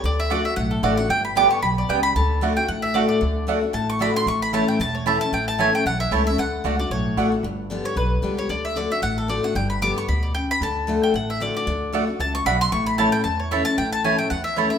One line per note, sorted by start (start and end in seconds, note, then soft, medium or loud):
0.03 0.40 D2 medium
0.03 0.29 D3 medium
0.03 0.19 D5 medium
0.20 0.31 E5 medium
0.30 0.44 D3 medium
0.30 0.40 A3 medium
0.30 0.45 A3 medium
0.30 0.45 D4 loud
0.30 0.41 F#4 loud
0.30 0.43 F#4 loud
0.30 0.41 D5 loud
0.30 0.45 D5 medium
0.30 0.41 F#5 loud
0.44 0.57 D4 soft
0.44 0.56 F#4 medium
0.44 0.56 E5 medium
0.56 0.79 B1 medium
0.56 1.07 A2 medium
0.56 0.71 F#5 medium
0.71 0.83 A4 medium
0.83 1.06 A1 medium
0.83 0.97 D3 medium
0.83 0.93 A3 medium
0.83 0.97 A3 medium
0.83 0.98 D4 medium
0.83 0.94 F#4 loud
0.83 0.96 F#4 loud
0.83 0.98 D5 medium
0.83 0.94 D5 medium
0.83 0.94 F#5 loud
0.97 1.10 D4 medium
0.97 1.09 F#4 medium
0.97 1.09 F#5 medium
1.09 1.46 G1 medium
1.09 1.24 G5 medium
1.25 1.36 B5 medium
1.35 1.61 D3 medium
1.35 1.62 G3 medium
1.35 1.46 B3 medium
1.35 1.62 B3 loud
1.35 1.46 G4 loud
1.35 1.62 G4 loud
1.35 1.47 D5 medium
1.35 1.47 G5 loud
1.35 1.50 D6 loud
1.51 1.62 C#6 medium
1.62 1.85 B1 medium
1.62 1.88 B2 medium
1.62 1.77 B5 medium
1.78 1.89 D5 medium
1.89 2.11 C#2 medium
1.89 2.15 C#3 medium
1.89 1.99 B3 loud
1.89 1.99 G4 medium
1.89 2.00 D5 loud
1.89 2.03 G5 medium
1.89 2.00 G5 loud
2.03 2.15 B5 loud
2.15 2.52 D2 medium
2.15 2.40 D3 loud
2.15 2.54 A5 medium
2.41 2.56 D3 medium
2.41 2.52 A3 medium
2.41 2.56 A3 medium
2.41 2.56 D4 loud
2.41 2.52 F#4 medium
2.41 2.55 F#4 medium
2.41 2.52 D5 loud
2.41 2.53 F#5 loud
2.56 2.69 D4 soft
2.56 2.68 F#4 medium
2.56 2.68 G5 medium
2.68 3.05 A1 medium
2.68 3.19 A2 medium
2.68 2.83 F#5 medium
2.82 2.94 E5 medium
2.94 3.20 D3 medium
2.94 3.05 A3 loud
2.94 3.20 A3 loud
2.94 3.21 D4 medium
2.94 3.05 F#4 loud
2.94 3.21 F#4 medium
2.94 3.07 D5 medium
2.94 3.05 D5 loud
2.94 3.05 F#5 loud
3.09 3.45 D5 medium
3.21 3.58 D2 medium
3.21 3.46 D3 medium
3.47 3.61 D3 medium
3.47 3.62 A3 medium
3.47 3.58 A3 medium
3.47 3.62 D4 medium
3.47 3.58 F#4 medium
3.47 3.60 F#4 medium
3.47 3.58 D5 medium
3.47 3.58 F#5 loud
3.61 3.74 D4 medium
3.61 3.73 F#4 medium
3.73 4.10 A1 medium
3.73 4.24 A2 medium
3.73 3.88 A5 medium
3.90 4.01 C#6 loud
3.99 4.14 D3 medium
3.99 4.14 A3 medium
3.99 4.11 A3 medium
3.99 4.15 D4 loud
3.99 4.11 F#4 loud
3.99 4.13 F#4 loud
3.99 4.11 D5 medium
3.99 4.11 F#5 loud
3.99 4.15 B5 loud
4.14 4.27 D4 medium
4.14 4.26 F#4 medium
4.14 4.27 C6 loud
4.26 4.63 A1 medium
4.26 4.78 A2 loud
4.26 4.42 C#6 loud
4.42 4.53 B5 loud
4.53 4.78 E3 medium
4.53 4.63 A3 medium
4.53 4.79 A3 loud
4.53 4.79 C#4 loud
4.53 4.63 E4 medium
4.53 4.80 E4 loud
4.53 4.64 C#5 loud
4.53 4.68 A5 medium
4.53 4.64 A5 medium
4.68 4.80 G5 medium
4.80 5.16 E1 medium
4.80 5.30 E2 medium
4.80 4.94 A5 loud
4.95 5.06 C#5 medium
5.06 5.20 E3 medium
5.06 5.16 A3 medium
5.06 5.20 A3 medium
5.06 5.21 C#4 medium
5.06 5.16 E4 medium
5.06 5.19 E4 medium
5.06 5.16 C#5 medium
5.06 5.21 E5 medium
5.06 5.16 A5 loud
5.20 5.33 C#4 medium
5.20 5.32 E4 medium
5.20 5.32 A5 loud
5.32 5.69 A1 medium
5.32 5.83 A2 medium
5.32 5.47 G5 medium
5.48 5.59 A5 loud
5.58 5.73 E3 medium
5.58 5.69 A3 medium
5.58 5.73 A3 loud
5.58 5.73 C#4 medium
5.58 5.69 E4 medium
5.58 5.72 E4 loud
5.58 5.69 C#5 loud
5.58 5.74 G#5 medium
5.58 5.69 A5 loud
5.73 5.86 C#4 medium
5.73 5.85 E4 medium
5.73 5.86 G5 medium
5.85 6.08 B1 medium
5.85 6.36 E2 medium
5.85 6.00 F#5 loud
6.00 6.12 E5 medium
6.11 6.34 C#2 medium
6.11 6.25 E3 medium
6.11 6.22 A3 loud
6.11 6.26 A3 medium
6.11 6.26 C#4 medium
6.11 6.22 E4 loud
6.11 6.25 E4 loud
6.11 6.22 C#5 loud
6.11 6.26 C#5 medium
6.11 6.22 A5 loud
6.26 6.39 C#4 medium
6.26 6.38 E4 medium
6.26 6.38 E5 medium
6.38 6.56 D2 medium
6.38 6.63 D3 medium
6.38 6.77 F#5 loud
6.64 6.87 C#2 medium
6.64 6.78 D3 medium
6.64 6.74 A3 medium
6.64 6.79 A3 medium
6.64 6.79 D4 medium
6.64 6.75 F#4 loud
6.64 6.78 F#4 medium
6.64 6.75 D5 medium
6.64 6.75 F#5 loud
6.79 6.92 D4 soft
6.79 6.91 F#4 medium
6.79 6.91 D5 medium
6.90 7.13 B1 medium
6.90 7.42 A2 medium
6.90 7.35 C#5 medium
7.17 7.39 A1 medium
7.17 7.31 D3 medium
7.17 7.27 A3 medium
7.17 7.32 A3 medium
7.17 7.32 D4 medium
7.17 7.27 F#4 medium
7.17 7.31 F#4 medium
7.17 7.28 D5 medium
7.17 7.28 F#5 medium
7.32 7.44 D4 soft
7.32 7.43 F#4 medium
7.43 7.80 G1 medium
7.43 7.95 G2 loud
7.70 7.84 D3 medium
7.70 7.85 G3 medium
7.70 7.85 B3 loud
7.70 7.83 G4 loud
7.84 7.97 B3 medium
7.84 7.96 G4 medium
7.84 7.97 C#5 medium
7.96 8.19 B1 medium
7.96 8.21 D3 medium
7.96 8.35 B4 medium
8.22 8.45 C#2 medium
8.22 8.37 D3 medium
8.22 8.37 G3 loud
8.22 8.37 B3 medium
8.22 8.36 G4 loud
8.37 8.50 B3 soft
8.37 8.49 G4 medium
8.37 8.49 C#5 medium
8.49 8.86 D2 medium
8.49 8.74 D3 loud
8.49 8.64 D5 medium
8.65 8.76 E5 medium
8.76 8.90 D3 medium
8.76 8.90 A3 medium
8.76 8.90 D4 medium
8.76 8.89 F#4 loud
8.76 8.90 D5 medium
8.90 9.03 D4 soft
8.90 9.02 F#4 medium
8.90 9.02 E5 medium
9.02 9.38 A1 medium
9.02 9.53 A2 medium
9.02 9.17 F#5 loud
9.18 9.29 A4 medium
9.28 9.42 D3 medium
9.28 9.43 A3 medium
9.28 9.43 D4 medium
9.28 9.42 F#4 medium
9.28 9.43 D5 medium
9.43 9.56 D4 medium
9.43 9.55 F#4 medium
9.43 9.55 F#5 medium
9.55 9.91 G1 medium
9.55 10.06 G2 loud
9.55 9.69 G5 medium
9.70 9.81 B5 medium
9.82 9.96 D3 medium
9.82 9.96 G3 medium
9.82 9.96 B3 loud
9.82 9.95 G4 loud
9.82 9.96 D6 loud
9.96 10.09 B3 soft
9.96 10.08 G4 medium
9.96 10.08 C#6 medium
10.08 10.44 D2 medium
10.08 10.34 B2 medium
10.08 10.22 B5 medium
10.23 10.34 D5 medium
10.35 10.60 C#3 medium
10.35 10.49 G5 medium
10.51 10.62 B5 loud
10.61 10.97 D2 medium
10.61 10.86 D3 medium
10.61 11.00 A5 medium
10.87 11.13 D3 medium
10.87 11.13 A3 medium
10.87 11.13 D4 medium
10.87 11.14 F#4 loud
11.03 11.14 G5 medium
11.14 11.50 A1 medium
11.14 11.65 A2 medium
11.14 11.29 F#5 medium
11.30 11.41 E5 medium
11.40 11.54 D3 medium
11.40 11.55 A3 medium
11.40 11.55 D4 medium
11.40 11.53 F#4 medium
11.40 11.55 D5 medium
11.54 11.67 D4 medium
11.54 11.66 F#4 medium
11.54 11.92 D5 medium
11.67 12.03 D2 medium
11.67 11.91 D3 loud
11.93 12.07 D3 medium
11.93 12.07 A3 loud
11.93 12.03 A3 loud
11.93 12.08 D4 loud
11.93 12.04 F#4 medium
11.93 12.06 F#4 loud
11.93 12.04 D5 loud
11.93 12.04 F#5 medium
12.07 12.20 D4 medium
12.07 12.19 F#4 medium
12.19 12.42 C#2 medium
12.19 12.45 F#2 medium
12.19 12.34 A5 medium
12.35 12.46 C#6 loud
12.46 12.68 B1 medium
12.46 12.71 B2 medium
12.46 12.56 A3 medium
12.46 12.56 F#4 loud
12.46 12.56 D5 loud
12.46 12.56 F#5 loud
12.46 12.60 B5 loud
12.61 12.72 C6 loud
12.72 13.09 A1 medium
12.72 13.23 A2 loud
12.72 12.86 C#6 loud
12.86 12.98 B5 medium
12.98 13.12 E3 loud
12.98 13.09 A3 medium
12.98 13.13 A3 medium
12.98 13.13 C#4 medium
12.98 13.09 E4 medium
12.98 13.12 E4 loud
12.98 13.09 C#5 loud
12.98 13.12 A5 medium
12.98 13.09 A5 loud
13.12 13.26 C#4 medium
13.12 13.25 E4 medium
13.12 13.23 G5 medium
13.24 13.61 E2 medium
13.24 13.76 E2 medium
13.24 13.39 A5 loud
13.39 13.51 C#5 medium
13.51 13.65 E3 medium
13.51 13.61 A3 medium
13.51 13.66 A3 medium
13.51 13.66 C#4 loud
13.51 13.62 E4 medium
13.51 13.65 E4 medium
13.51 13.62 C#5 loud
13.51 13.65 E5 medium
13.51 13.62 A5 loud
13.65 13.79 C#4 medium
13.65 13.78 E4 medium
13.65 13.77 A5 loud
13.78 14.14 A1 medium
13.78 14.28 A2 loud
13.78 13.92 G5 medium
13.92 14.04 A5 loud
14.04 14.18 E3 loud
14.04 14.14 A3 medium
14.04 14.19 A3 loud
14.04 14.19 C#4 loud
14.04 14.15 E4 medium
14.04 14.17 E4 medium
14.04 14.15 C#5 loud
14.04 14.18 G#5 medium
14.04 14.15 A5 loud
14.18 14.31 C#4 soft
14.18 14.30 E4 medium
14.18 14.30 G5 medium
14.30 14.67 E2 medium
14.30 14.78 E2 medium
14.30 14.44 F#5 loud
14.44 14.56 E5 medium
14.56 14.71 E3 medium
14.56 14.67 A3 loud
14.56 14.71 A3 loud
14.56 14.72 C#4 loud
14.56 14.67 E4 loud
14.56 14.70 E4 loud
14.56 14.71 C#5 medium
14.56 14.68 C#5 loud
14.56 14.68 A5 loud
14.70 14.78 C#4 soft
14.70 14.78 E4 medium
14.70 14.78 E5 medium